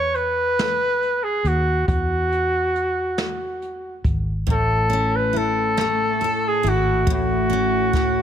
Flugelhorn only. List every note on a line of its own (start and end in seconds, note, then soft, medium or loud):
0.00 0.16 C#5 medium
0.15 1.25 B4 medium
1.23 1.49 G#4 medium
1.47 1.87 F#4 medium
1.88 4.00 F#4 medium
4.51 5.17 A4 medium
5.16 5.39 B4 medium
5.37 6.49 A4 medium
6.48 6.70 G#4 medium
6.68 7.09 F#4 medium
7.14 8.22 F#4 medium